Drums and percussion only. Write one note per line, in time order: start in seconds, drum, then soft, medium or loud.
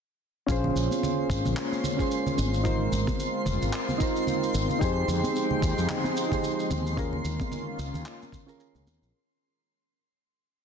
0.49 kick loud
0.49 shaker soft
0.64 low conga medium
0.76 shaker medium
0.91 high conga medium
0.91 shaker soft
1.03 low conga medium
1.03 shaker soft
1.30 kick loud
1.30 shaker medium
1.45 low conga medium
1.45 shaker soft
1.57 clap medium
1.57 shaker soft
1.72 high conga medium
1.72 shaker soft
1.84 low conga medium
1.84 shaker medium
1.99 kick medium
1.99 shaker soft
2.11 shaker soft
2.26 low conga medium
2.26 shaker soft
2.38 high conga medium
2.38 shaker medium
2.54 shaker soft
2.65 kick loud
2.65 low conga medium
2.65 shaker soft
2.93 shaker medium
3.07 kick loud
3.07 high conga medium
3.07 low conga medium
3.07 shaker soft
3.20 shaker soft
3.46 low conga medium
3.46 shaker medium
3.62 shaker soft
3.73 clap medium
3.73 shaker soft
3.89 high conga medium
3.89 low conga medium
3.89 shaker soft
4.00 kick loud
4.00 shaker medium
4.16 shaker soft
4.27 low conga medium
4.27 shaker soft
4.43 shaker soft
4.54 high conga medium
4.54 shaker medium
4.70 low conga medium
4.70 shaker soft
4.81 kick loud
4.81 shaker soft
5.08 low conga medium
5.08 shaker medium
5.24 high conga medium
5.24 shaker soft
5.36 shaker soft
5.51 low conga medium
5.62 kick loud
5.62 shaker medium
5.78 shaker soft
5.89 clap medium
5.89 low conga medium
5.89 shaker soft
6.04 high conga medium
6.04 shaker soft
6.17 shaker medium
6.32 kick medium
6.32 low conga medium
6.32 shaker soft
6.44 shaker soft
6.59 shaker soft
6.70 high conga medium
6.70 low conga medium
6.70 shaker medium
6.86 shaker soft
6.97 kick loud
6.97 shaker soft
7.13 low conga medium
7.25 shaker medium
7.40 kick loud
7.40 high conga loud
7.40 shaker soft
7.51 low conga medium
7.51 shaker soft
7.79 shaker medium
7.94 low conga medium
7.94 shaker soft
8.06 clap medium
8.06 shaker soft
8.22 high conga medium
8.22 shaker soft
8.32 kick loud
8.32 low conga medium
8.32 shaker medium
8.49 shaker soft
8.60 shaker soft
8.75 low conga medium
8.75 shaker soft
8.87 high conga medium
8.87 shaker medium
9.03 shaker soft